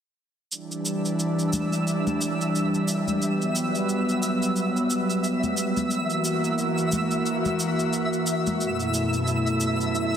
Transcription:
0.51 3.19 E3 medium
0.51 5.87 G3 medium
0.51 3.19 D4 medium
0.51 10.17 E5 medium
0.51 10.17 E6 medium
0.51 shaker soft
0.72 shaker soft
0.86 shaker medium
1.05 shaker soft
1.20 shaker soft
1.39 shaker soft
1.53 high conga medium
1.53 shaker medium
1.73 shaker soft
1.87 shaker soft
2.07 high conga medium
2.07 shaker soft
2.21 shaker medium
2.41 shaker soft
2.55 shaker soft
2.75 shaker soft
2.88 shaker medium
3.08 high conga soft
3.08 shaker soft
3.22 5.89 F#3 medium
3.22 5.89 B3 medium
3.22 shaker soft
3.42 shaker soft
3.56 shaker medium
3.75 shaker soft
3.89 shaker soft
4.09 shaker soft
4.23 shaker medium
4.43 shaker soft
4.56 shaker soft
4.77 shaker soft
4.90 shaker medium
5.10 shaker soft
5.24 shaker soft
5.43 high conga medium
5.43 shaker soft
5.57 shaker medium
5.77 high conga medium
5.77 shaker soft
5.91 8.58 E3 medium
5.91 8.58 A#3 medium
5.91 8.58 F#4 medium
5.91 shaker soft
6.10 shaker soft
6.25 shaker medium
6.44 shaker soft
6.58 shaker soft
6.78 shaker soft
6.92 high conga medium
6.92 shaker medium
7.11 shaker soft
7.26 shaker soft
7.45 high conga medium
7.45 shaker soft
7.60 shaker medium
7.79 shaker soft
7.93 shaker soft
8.13 shaker soft
8.27 shaker medium
8.47 high conga medium
8.47 shaker soft
8.61 10.17 F#2 medium
8.61 10.17 B2 medium
8.61 10.17 A3 medium
8.61 10.17 E4 medium
8.61 shaker soft
8.80 shaker soft
8.94 shaker medium
9.13 shaker soft
9.27 shaker soft
9.47 shaker soft
9.61 shaker medium
9.81 shaker soft
9.95 shaker soft

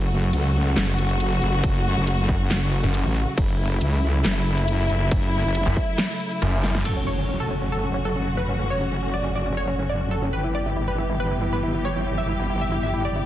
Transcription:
0.00 0.31 F#1 loud
0.00 6.81 C#3 medium
0.00 6.81 F#3 medium
0.00 6.81 A3 medium
0.00 3.36 F#4 medium
0.00 closed hi-hat medium
0.33 0.75 C#2 medium
0.33 closed hi-hat medium
0.33 ride soft
0.77 1.40 F#1 medium
0.77 snare loud
0.77 clap medium
0.77 closed hi-hat medium
0.77 ride medium
0.98 closed hi-hat medium
1.10 closed hi-hat soft
1.20 closed hi-hat medium
1.20 ride soft
1.42 1.62 F#1 loud
1.42 closed hi-hat medium
1.64 1.95 F#1 loud
1.64 kick loud
1.64 closed hi-hat medium
1.64 ride medium
1.75 closed hi-hat medium
1.97 2.82 F#1 loud
2.07 closed hi-hat medium
2.07 ride soft
2.29 kick medium
2.51 snare loud
2.51 clap medium
2.51 closed hi-hat medium
2.51 ride medium
2.72 closed hi-hat medium
2.84 3.04 F#1 loud
2.84 closed hi-hat medium
2.94 closed hi-hat medium
2.94 ride soft
3.05 3.25 A1 loud
3.16 closed hi-hat medium
3.38 3.79 F#1 loud
3.38 6.84 E4 loud
3.38 kick loud
3.38 closed hi-hat medium
3.38 ride medium
3.49 closed hi-hat medium
3.81 4.23 C#2 medium
3.81 closed hi-hat medium
3.81 ride soft
4.24 4.88 F#1 medium
4.24 snare loud
4.24 clap medium
4.24 closed hi-hat medium
4.24 ride medium
4.46 closed hi-hat medium
4.58 closed hi-hat medium
4.68 closed hi-hat medium
4.68 ride medium
4.90 5.10 F#1 loud
4.90 closed hi-hat medium
5.11 5.43 F#1 loud
5.11 kick loud
5.11 closed hi-hat medium
5.11 ride medium
5.23 closed hi-hat medium
5.44 5.64 F#1 loud
5.55 closed hi-hat medium
5.55 ride soft
5.66 5.75 F#1 loud
5.77 kick medium
5.98 snare loud
5.98 clap loud
5.98 closed hi-hat medium
5.98 ride medium
6.20 closed hi-hat medium
6.31 closed hi-hat medium
6.42 6.84 F#1 loud
6.42 closed hi-hat medium
6.42 ride soft
6.64 snare medium
6.64 closed hi-hat medium
6.75 snare medium
6.85 10.31 F#1 medium
6.85 10.30 C#3 medium
6.85 10.30 F#3 medium
6.85 10.30 A3 medium
6.85 10.30 F#4 medium
6.85 6.95 A4 medium
6.85 crash medium
6.85 impact medium
6.96 7.05 C#4 medium
7.07 7.17 C#5 medium
7.18 7.27 C#4 medium
7.29 7.38 C#4 medium
7.40 7.49 A4 medium
7.51 7.60 C#4 medium
7.62 7.71 C#4 medium
7.72 7.82 A4 medium
7.83 7.92 C#4 medium
7.94 8.04 C#4 medium
8.05 8.14 A4 medium
8.16 8.25 C#4 medium
8.27 8.36 C#4 medium
8.37 8.47 B4 medium
8.49 8.58 C#4 medium
8.59 8.69 C#4 medium
8.70 8.79 C#5 medium
8.81 8.90 C#4 medium
8.92 9.01 C#4 medium
9.03 9.12 C#4 medium
9.14 9.23 D5 medium
9.24 9.34 C#4 medium
9.35 9.44 D5 medium
9.46 9.56 C#4 medium
9.57 9.66 C#5 medium
9.68 9.77 C#4 medium
9.79 9.88 C#4 medium
9.90 9.99 D5 medium
10.01 10.10 C#4 medium
10.11 10.21 A4 medium
10.22 10.31 C#4 medium
10.33 13.26 G1 medium
10.33 13.26 E3 medium
10.33 13.26 G3 medium
10.33 13.26 B3 medium
10.33 13.26 G4 medium
10.33 10.43 B4 medium
10.44 10.53 E4 medium
10.55 10.64 D5 medium
10.66 10.75 E4 medium
10.76 10.86 E4 medium
10.88 10.97 B4 medium
10.98 11.08 E4 medium
11.10 11.18 E4 medium
11.20 11.30 B4 medium
11.31 11.40 E4 medium
11.42 11.51 E4 medium
11.53 11.62 B4 medium
11.63 11.73 E4 medium
11.74 11.83 E4 medium
11.85 11.95 C#5 medium
11.96 12.05 E4 medium
12.07 12.16 E4 medium
12.18 12.27 E5 medium
12.28 12.38 E4 medium
12.40 12.49 E4 medium
12.50 12.60 E4 medium
12.61 12.70 E5 medium
12.72 12.82 E4 medium
12.83 12.92 E5 medium
12.94 13.03 E4 medium
13.05 13.14 D5 medium
13.16 13.25 E4 medium

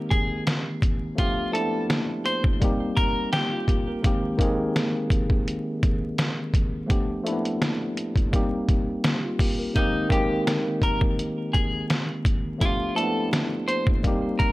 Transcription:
0.00 1.20 D#3 medium
0.00 1.20 G#3 medium
0.00 1.20 A#3 medium
0.00 1.20 C4 medium
0.00 1.20 G4 medium
0.10 0.43 G#4 medium
0.10 kick loud
0.10 closed hi-hat medium
0.47 snare loud
0.47 closed hi-hat medium
0.82 kick medium
0.82 closed hi-hat medium
1.15 1.40 F3 medium
1.15 1.40 A3 medium
1.15 1.41 B3 medium
1.15 1.42 D4 medium
1.15 1.51 F4 loud
1.15 kick loud
1.15 closed hi-hat loud
1.20 1.42 G4 medium
1.52 2.41 F3 medium
1.52 2.41 A3 medium
1.52 1.61 A#3 medium
1.52 2.42 D4 medium
1.52 1.86 A4 medium
1.52 closed hi-hat medium
1.56 2.43 E4 medium
1.61 2.45 B3 medium
1.90 snare loud
1.90 closed hi-hat medium
2.25 2.43 C5 medium
2.25 closed hi-hat medium
2.44 kick loud
2.60 3.76 G3 medium
2.60 3.33 A#3 medium
2.60 3.33 C4 medium
2.60 3.34 D#4 medium
2.60 kick medium
2.60 closed hi-hat medium
2.65 3.34 G4 loud
2.97 3.29 A#4 medium
2.97 kick loud
2.97 closed hi-hat medium
3.33 3.65 G4 medium
3.33 snare loud
3.33 closed hi-hat loud
3.53 3.68 F4 medium
3.68 3.87 A#3 medium
3.68 3.87 G4 medium
3.68 kick medium
3.68 closed hi-hat medium
3.88 4.22 A#4 medium
4.02 4.26 D#3 medium
4.02 4.27 G#3 medium
4.02 4.27 A#3 medium
4.02 4.28 C4 medium
4.02 kick loud
4.02 closed hi-hat loud
4.07 4.28 G4 medium
4.38 5.26 D#3 medium
4.38 5.27 G#3 medium
4.38 5.27 A#3 medium
4.38 5.28 C4 medium
4.38 kick medium
4.38 closed hi-hat medium
4.42 5.28 G#4 medium
4.76 snare loud
4.76 closed hi-hat medium
5.10 kick loud
5.10 closed hi-hat medium
5.30 kick loud
5.48 closed hi-hat medium
5.83 kick loud
5.83 closed hi-hat medium
6.18 snare loud
6.18 closed hi-hat medium
6.54 kick loud
6.54 closed hi-hat medium
6.86 7.11 F3 medium
6.86 7.12 A3 medium
6.86 7.12 B3 medium
6.86 7.13 D4 medium
6.86 kick loud
6.86 closed hi-hat loud
6.91 7.13 G4 medium
7.23 8.12 F3 medium
7.23 8.12 A3 medium
7.23 7.33 A#3 medium
7.23 8.14 D4 medium
7.23 closed hi-hat medium
7.28 8.14 E4 medium
7.32 8.16 B3 medium
7.45 closed hi-hat medium
7.62 snare loud
7.62 closed hi-hat medium
7.97 closed hi-hat medium
8.16 kick loud
8.16 closed hi-hat medium
8.32 9.47 G3 medium
8.32 9.04 A#3 medium
8.32 9.05 C4 medium
8.32 9.05 D#4 medium
8.32 kick medium
8.32 closed hi-hat medium
8.36 9.06 G4 medium
8.69 kick loud
8.69 closed hi-hat medium
9.04 snare loud
9.04 closed hi-hat loud
9.25 9.39 F4 medium
9.39 9.59 A#3 medium
9.39 9.58 G4 medium
9.39 kick medium
9.39 open hi-hat medium
9.59 9.93 A#4 medium
9.74 9.98 D#3 medium
9.74 9.98 G#3 medium
9.74 9.99 A#3 medium
9.74 9.99 C4 medium
9.74 10.08 D#4 loud
9.74 kick loud
9.74 closed hi-hat loud
9.78 10.00 G4 medium
10.09 10.98 D#3 medium
10.09 10.98 G#3 medium
10.09 10.99 A#3 medium
10.09 10.99 C4 medium
10.09 10.44 G4 medium
10.09 kick medium
10.09 closed hi-hat medium
10.13 11.00 G4 medium
10.47 snare loud
10.47 closed hi-hat medium
10.82 11.01 A#4 medium
10.82 kick medium
10.82 closed hi-hat medium
11.01 kick loud
11.19 closed hi-hat medium
11.53 11.86 G#4 medium
11.53 kick loud
11.53 closed hi-hat medium
11.90 snare loud
11.90 closed hi-hat medium
12.25 kick loud
12.25 closed hi-hat medium
12.58 12.83 F3 medium
12.58 12.83 A3 medium
12.58 12.84 B3 medium
12.58 12.84 D4 medium
12.58 12.93 F4 loud
12.58 kick loud
12.58 closed hi-hat loud
12.62 12.85 G4 medium
12.95 13.83 F3 medium
12.95 13.84 A3 medium
12.95 13.04 A#3 medium
12.95 13.85 D4 medium
12.95 13.29 A4 medium
12.95 closed hi-hat medium
12.99 13.85 E4 medium
13.03 13.88 B3 medium
13.33 snare loud
13.33 closed hi-hat medium
13.68 13.86 C5 medium
13.68 closed hi-hat medium
13.87 kick medium
14.03 14.52 G3 medium
14.03 14.52 A#3 medium
14.03 14.52 C4 medium
14.03 14.52 D#4 medium
14.03 kick medium
14.03 closed hi-hat medium
14.07 14.52 G4 loud
14.39 14.52 A#4 medium
14.39 kick loud
14.39 closed hi-hat medium

